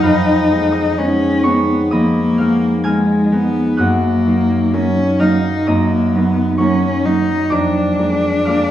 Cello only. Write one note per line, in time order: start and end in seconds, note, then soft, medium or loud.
0.00 1.00 D#4 medium
0.98 1.46 C#4 medium
1.45 1.95 B3 medium
1.93 2.85 A#3 medium
2.87 3.35 G#3 medium
3.33 3.82 B3 medium
3.81 4.75 A#3 medium
4.74 5.22 C#4 medium
5.20 5.69 D#4 medium
5.68 6.17 A#3 medium
6.15 6.59 B3 medium
6.59 7.07 C#4 medium
7.05 7.53 D#4 medium
7.52 8.71 D4 medium